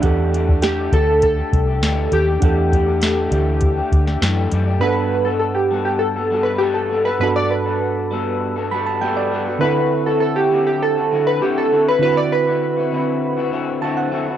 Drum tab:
HH |x-x-x-x-x-x-x-x-|x-x-x-x-x-x-x-x-|----------------|----------------|
SD |----o-------o---|----o------oo---|----------------|----------------|
BD |o--o--o-o-o-----|o-o-----o-o-----|----------------|----------------|

HH |----------------|----------------|
SD |----------------|----------------|
BD |----------------|----------------|